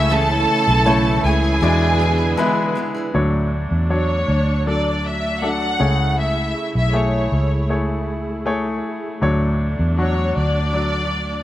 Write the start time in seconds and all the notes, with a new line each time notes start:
Already playing: C#2 C#3 E3 A3 C#4 E4 A4 C#5
0.10 C#3 E3 A3 C#4 G#4 A4 A5
0.31 A3 C#4
0.67 B1 A3 C#4 G#4
0.86 C#3 E3 A3 C#4 E4 C#5
1.24 C#2 E3 A3 C#4 G#4 G#5
1.42 A3 C#4 G#4
1.61 E2 B2 D3 E3 G#3 B3 D4 E4 G#4 D5
2.00 E3 B3 D4 G#4
2.18 B3 D4 G#4
2.37 E3 G#3 B3 D4 E4 G#4 B4
2.75 E3 B3 D4 G#4
2.94 B3 D4 G#4
3.14 D2 A2 F#3 A3 D4 C#5
3.71 E2
3.90 F#3 D4 C#5
4.28 D2
4.66 F#3 D4 A4 D5
5.06 E5
5.42 F#3 D4 A4 F#5
5.78 C#2 C#3 A3 E4 G#4 C#5
6.19 E5
6.75 B1 E5
6.93 A3 G#4 C#5 E5
7.32 C#2
7.69 A3 G#4 C#5
8.46 A3 G#4 C#5
9.21 D2 A2 F#3 D4 C#5
9.79 E2
9.97 F#3 D4 F#4 C#5
10.36 D2 D5
10.73 F#3 D4 D5